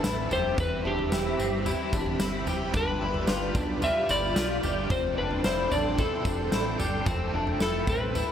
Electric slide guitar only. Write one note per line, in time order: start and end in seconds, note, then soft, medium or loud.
0.00 0.32 B4 loud
0.33 0.60 C5 loud
0.60 0.87 B4 loud
0.87 2.44 G4 medium
2.77 3.87 B4 loud
3.84 4.11 E5 loud
4.11 4.91 D5 loud
4.91 5.18 C5 loud
5.18 5.43 B4 loud
5.45 5.73 C5 medium
5.72 5.99 D5 medium
5.99 6.76 A4 medium
7.62 7.89 A4 medium
7.90 8.32 B4 medium